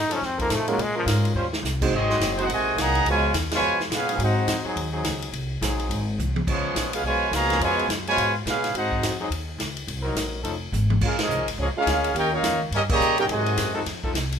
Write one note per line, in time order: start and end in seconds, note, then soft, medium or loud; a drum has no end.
0.00 0.21 F#2 loud
0.00 0.15 D#4 medium
0.10 0.18 F3 loud
0.10 0.18 C4 medium
0.10 0.27 C#4 loud
0.10 0.18 D#4 medium
0.10 0.18 A4 loud
0.10 ride medium
0.21 0.49 F2 medium
0.21 snare soft
0.25 0.41 C4 medium
0.38 0.77 F3 loud
0.38 0.55 A#3 medium
0.38 0.76 C4 medium
0.38 0.77 D#4 medium
0.38 0.76 A4 loud
0.38 kick medium
0.38 ride medium
0.50 0.77 A2 loud
0.50 0.69 A3 medium
0.50 snare medium
0.50 hi-hat pedal medium
0.50 ride medium
0.68 0.83 F#3 medium
0.68 0.78 G#3 medium
0.68 0.78 A#3 medium
0.68 0.78 C#4 medium
0.68 0.78 F4 medium
0.68 0.78 A#4 medium
0.68 ride medium
0.78 1.05 A#2 loud
0.78 ride medium
0.82 0.97 G#3 loud
0.94 1.04 F3 medium
0.94 1.33 G#3 loud
0.94 1.33 C#4 loud
0.94 1.33 F4 loud
0.94 1.33 A#4 loud
1.06 1.34 G#2 loud
1.06 snare medium
1.06 hi-hat pedal medium
1.06 ride medium
1.25 ride medium
1.34 1.62 D#2 medium
1.34 1.47 G3 loud
1.34 1.47 C#4 loud
1.34 1.47 F4 medium
1.34 1.47 C5 loud
1.53 snare medium
1.63 1.90 C2 loud
1.63 snare medium
1.63 hi-hat pedal medium
1.81 1.92 G#3 medium
1.81 1.92 C4 medium
1.81 1.92 D#4 medium
1.81 1.92 F#4 medium
1.81 1.92 C5 medium
1.81 kick medium
1.81 crash medium
1.91 2.19 G#1 medium
1.91 2.35 F#3 medium
1.91 2.35 C4 medium
1.91 2.36 C4 medium
1.91 2.35 D#4 medium
1.91 2.36 D#5 loud
1.95 2.36 F#4 medium
1.95 2.36 G#4 medium
2.09 2.18 G#3 loud
2.09 2.18 D#4 medium
2.09 2.17 F#4 medium
2.09 2.17 C5 loud
2.09 snare medium
2.20 2.48 F#1 loud
2.20 snare medium
2.20 hi-hat pedal medium
2.20 ride medium
2.38 2.46 G#3 loud
2.38 2.50 C4 medium
2.38 2.46 D#4 loud
2.38 2.50 D#4 medium
2.38 2.51 D#4 medium
2.38 2.46 F#4 loud
2.38 2.50 F#4 medium
2.38 2.51 G#4 medium
2.38 2.46 C5 loud
2.38 2.51 C5 medium
2.38 2.51 F#5 loud
2.38 ride medium
2.49 2.76 A#1 medium
2.49 2.77 C3 medium
2.49 2.77 D#3 medium
2.49 2.77 G#3 loud
2.49 ride medium
2.53 2.78 F#4 medium
2.53 2.78 C5 medium
2.53 2.78 D#5 medium
2.53 2.78 G#5 loud
2.76 3.05 C2 loud
2.76 3.06 D#3 medium
2.76 3.07 F#3 medium
2.76 3.07 A#3 loud
2.76 3.08 G#4 medium
2.76 3.07 D#5 loud
2.76 3.07 F#5 loud
2.76 snare medium
2.76 hi-hat pedal medium
2.76 ride medium
2.80 3.08 A#5 loud
2.95 ride medium
3.05 3.33 C#2 medium
3.05 3.33 B2 loud
3.05 3.33 F3 medium
3.05 3.33 G#3 medium
3.05 ride medium
3.10 3.34 F4 medium
3.10 3.34 B4 loud
3.10 3.35 C#5 medium
3.10 3.35 G#5 loud
3.33 3.61 D#2 loud
3.33 snare medium
3.33 hi-hat pedal medium
3.33 ride medium
3.51 3.79 B2 medium
3.51 3.79 F3 medium
3.51 3.79 G#3 medium
3.51 3.80 F4 medium
3.51 3.80 B4 medium
3.51 3.80 C#5 medium
3.51 snare medium
3.51 ride medium
3.55 3.80 G#5 loud
3.62 3.89 F2 medium
3.80 snare medium
3.90 4.18 A#2 loud
3.90 4.18 G#3 medium
3.90 4.18 B3 medium
3.90 4.18 F4 medium
3.90 snare medium
3.90 hi-hat pedal medium
3.90 ride medium
3.95 4.20 C#4 medium
3.95 4.20 G#4 medium
3.95 4.20 B4 medium
3.95 4.20 F5 medium
4.08 4.46 F#3 loud
4.08 4.46 C4 loud
4.08 4.46 D#4 medium
4.08 4.46 G#4 loud
4.08 ride medium
4.18 4.46 G#2 medium
4.18 4.63 C4 medium
4.18 4.63 D#4 medium
4.18 4.63 F#4 medium
4.18 ride medium
4.24 4.64 D#4 medium
4.24 4.64 G#4 medium
4.24 4.64 C5 medium
4.24 4.64 F#5 medium
4.47 4.63 F2 loud
4.47 snare medium
4.47 hi-hat pedal medium
4.47 ride medium
4.64 4.91 F#3 loud
4.64 4.92 C4 loud
4.64 4.91 D#4 medium
4.64 4.92 G#4 loud
4.64 muted upright bass stroke soft
4.76 5.03 D#2 loud
4.76 ride medium
4.92 5.31 F#3 loud
4.92 5.31 C4 medium
4.92 5.31 D#4 medium
4.92 5.31 G#4 loud
5.04 5.32 C#2 loud
5.04 snare medium
5.04 hi-hat pedal medium
5.04 ride medium
5.22 ride medium
5.33 5.61 C2 medium
5.33 ride medium
5.61 5.89 A#1 loud
5.61 6.04 F#3 loud
5.61 6.04 C4 medium
5.61 6.04 D#4 loud
5.61 6.04 G#4 loud
5.61 snare medium
5.61 hi-hat pedal medium
5.61 ride medium
5.79 ride soft
5.89 6.17 G#1 medium
5.89 ride medium
6.18 6.46 C2 medium
6.18 hi-hat pedal medium
6.18 high tom medium
6.36 high tom medium
6.47 6.74 C#2 loud
6.47 6.90 F3 medium
6.47 6.90 G#3 medium
6.47 6.91 B3 medium
6.47 6.90 C#4 medium
6.47 6.91 F4 medium
6.47 6.91 G#4 medium
6.47 6.91 C#5 medium
6.47 kick medium
6.47 crash medium
6.75 7.02 A#1 loud
6.75 snare medium
6.75 hi-hat pedal medium
6.75 ride medium
6.93 7.04 G#3 medium
6.93 7.04 B3 medium
6.93 7.05 C#4 medium
6.93 7.05 F4 medium
6.93 7.05 G#4 medium
6.93 7.05 B4 medium
6.93 7.05 F5 loud
6.93 ride medium
7.03 7.31 B1 medium
7.03 7.31 B2 medium
7.03 7.31 F3 medium
7.03 7.31 G#3 medium
7.03 7.32 C#5 medium
7.03 7.32 G#5 loud
7.07 7.32 F4 medium
7.07 7.32 B4 loud
7.31 7.59 C#2 loud
7.31 7.60 B2 medium
7.31 7.59 F3 medium
7.31 7.61 A#3 loud
7.31 7.62 G#4 medium
7.31 7.62 F5 loud
7.31 snare medium
7.31 hi-hat pedal medium
7.31 ride medium
7.35 7.62 C#5 medium
7.35 7.62 A#5 loud
7.42 snare soft
7.50 7.87 F3 loud
7.50 7.87 B3 medium
7.50 7.87 C#4 medium
7.50 7.87 G#4 loud
7.50 snare medium
7.50 ride medium
7.60 7.88 F2 loud
7.60 7.87 B2 loud
7.60 7.87 F3 loud
7.60 7.87 G#3 medium
7.60 7.89 F4 medium
7.60 7.89 B4 medium
7.60 7.89 C#5 loud
7.60 7.89 G#5 loud
7.60 ride medium
7.79 ride medium
7.88 8.16 F#2 loud
7.88 snare medium
7.88 hi-hat pedal medium
7.88 ride medium
8.06 8.33 B2 medium
8.06 8.33 F3 medium
8.06 8.33 G#3 medium
8.06 8.34 F4 medium
8.06 8.34 B4 medium
8.06 8.34 C#5 loud
8.06 8.34 G#5 loud
8.06 ride medium
8.17 8.45 G#2 loud
8.17 ride medium
8.46 8.73 A#2 loud
8.46 8.73 G#3 medium
8.46 8.73 B3 medium
8.46 8.74 C#4 medium
8.46 8.73 F4 medium
8.46 8.74 G#4 medium
8.46 8.74 B4 medium
8.46 8.74 F5 medium
8.46 snare medium
8.46 hi-hat pedal medium
8.46 ride medium
8.64 snare soft
8.64 ride medium
8.74 9.01 G#2 medium
8.74 9.17 C4 medium
8.74 9.17 D#4 medium
8.74 9.18 D#4 medium
8.74 9.17 F#4 medium
8.74 9.18 G#4 medium
8.74 9.18 C5 medium
8.74 9.18 F#5 loud
8.74 ride medium
8.92 kick medium
9.02 9.29 F2 loud
9.02 snare medium
9.02 hi-hat pedal medium
9.02 ride medium
9.21 9.28 F#3 loud
9.21 9.28 C4 medium
9.21 9.28 D#4 loud
9.21 9.28 G#4 loud
9.30 9.58 D#2 medium
9.30 ride medium
9.58 9.86 C#2 medium
9.58 snare medium
9.58 hi-hat pedal medium
9.58 ride medium
9.77 ride medium
9.87 10.14 C2 medium
9.87 ride medium
10.02 10.41 F#3 loud
10.02 10.41 C4 loud
10.02 10.42 D#4 loud
10.02 10.41 A#4 loud
10.15 10.43 A#1 loud
10.15 snare medium
10.15 hi-hat pedal medium
10.15 ride medium
10.44 10.72 F1 medium
10.44 10.56 F3 medium
10.44 10.56 C#4 medium
10.44 10.56 D#4 medium
10.44 10.56 A4 loud
10.44 ride medium
10.72 11.00 G#1 loud
10.72 hi-hat pedal medium
10.72 high tom medium
10.90 high tom medium
11.01 11.28 A#1 medium
11.01 11.18 G#3 medium
11.01 11.18 C#4 medium
11.01 11.18 F4 medium
11.01 kick medium
11.01 crash medium
11.05 11.20 C#4 medium
11.05 11.19 G#4 medium
11.05 11.20 A#4 medium
11.05 11.19 F5 medium
11.19 11.45 F3 medium
11.19 11.45 G#3 medium
11.19 11.47 C#4 medium
11.19 11.46 D#4 medium
11.19 11.47 G#4 medium
11.19 11.47 D#5 medium
11.19 snare loud
11.19 ride medium
11.23 11.47 A#4 medium
11.29 11.39 C2 loud
11.29 hi-hat pedal medium
11.39 11.48 A#1 medium
11.48 11.57 G#1 medium
11.48 ride medium
11.58 11.74 C#2 loud
11.58 11.67 F3 medium
11.58 11.67 G#3 medium
11.58 11.69 A#3 medium
11.58 11.67 C#4 medium
11.58 11.69 F4 medium
11.58 11.69 G#4 medium
11.58 11.69 C#5 medium
11.76 12.13 G#3 medium
11.76 12.13 C#4 medium
11.76 12.14 C#4 medium
11.76 12.13 F4 loud
11.76 12.14 G#4 medium
11.76 12.14 A#4 medium
11.76 12.14 F5 loud
11.86 12.14 D2 loud
11.86 snare medium
11.86 hi-hat pedal medium
11.86 ride medium
12.04 ride medium
12.15 12.43 D#2 loud
12.15 12.31 A#3 medium
12.15 12.31 C#4 loud
12.15 12.33 D#4 medium
12.15 12.31 G4 medium
12.15 12.33 A#4 medium
12.15 12.33 C#5 medium
12.15 12.33 G5 loud
12.15 ride medium
12.32 12.59 A#3 medium
12.32 12.59 C#4 medium
12.32 12.60 D#4 medium
12.32 12.59 F4 medium
12.32 12.60 A#4 medium
12.32 12.60 C#5 medium
12.32 12.60 F5 loud
12.43 12.53 F2 loud
12.43 snare medium
12.43 hi-hat pedal medium
12.43 ride medium
12.53 12.61 D#2 medium
12.62 12.71 C#2 medium
12.71 12.99 G2 medium
12.71 12.82 G3 medium
12.71 12.82 A#3 medium
12.71 12.82 C#4 medium
12.71 12.82 D#4 medium
12.71 12.82 G4 medium
12.71 12.82 A#4 medium
12.71 12.82 D#5 loud
12.71 ride medium
12.89 13.17 C#3 loud
12.89 13.16 G3 loud
12.89 13.17 A#3 loud
12.89 13.17 G4 loud
12.89 13.17 C#5 loud
12.89 13.17 D#5 loud
12.89 13.17 A#5 loud
12.89 kick loud
12.89 crash medium
13.00 13.28 A#2 loud
13.00 hi-hat pedal medium
13.17 13.55 F#3 medium
13.17 13.24 A#3 medium
13.17 13.56 C4 medium
13.17 13.24 C#4 medium
13.17 13.55 D#4 medium
13.17 13.25 D#4 medium
13.17 13.24 G4 medium
13.17 13.55 G#4 loud
13.17 13.25 A#4 medium
13.17 13.25 C#5 medium
13.17 13.25 G5 medium
13.17 ride medium
13.29 13.57 G#2 loud
13.29 13.83 C3 medium
13.29 13.83 D#3 loud
13.29 13.83 G#3 medium
13.29 13.84 F#4 medium
13.29 13.84 C5 medium
13.29 13.84 D#5 medium
13.29 13.84 G#5 loud
13.29 ride medium
13.46 ride medium
13.57 13.85 F#2 loud
13.57 snare medium
13.57 hi-hat pedal medium
13.57 ride medium
13.74 13.82 F3 loud
13.74 13.82 C4 medium
13.74 13.82 D#4 loud
13.74 13.82 A4 loud
13.86 14.13 F2 medium
13.86 snare soft
13.86 ride medium
14.04 14.12 F3 loud
14.04 14.12 C4 medium
14.04 14.12 D#4 medium
14.04 14.11 A4 loud
14.04 kick medium
14.14 14.39 C2 loud
14.14 snare medium
14.14 hi-hat pedal medium
14.14 ride medium
14.32 ride medium